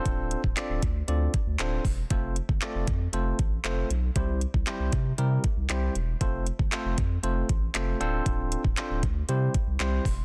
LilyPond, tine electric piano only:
\new Staff \with { instrumentName = "Tine electric piano" } { \time 4/4 \key f \major \tempo 4 = 117 << { r1 | r1 | r1 | r1 |
r2. c'''4 | } \\ { <c' d' f' a' c''>8 r8 <c' d' f' a' d''>8 r8 <c' d' f' a' d''>8 r8 <c' d' f' a' c''>8 r8 | <a c' f' a' c''>8 r8 <a c' f' a' d''>8 r8 <a c' f' a' c''>8 r8 <a c' f' a' c''>8 r8 | <g c' e' g' c''>8 r8 <g c' e' g' c''>8 r8 <g c' e' g' bes'>8 r8 <g c' e' g' c''>8 r8 | <a c' f' a' c''>8 r8 <a c' f' a' c''>8 r8 <a c' f' a' c''>8 r8 <a c' f' a' c''>8 <c' d' f' a' c''>8~ |
<c' d' f' a' c''>8 r8 <c' d' f' a' c''>8 r8 <g c' e' g' c''>8 r8 <g c' e' g' c''>8 r8 | } >> }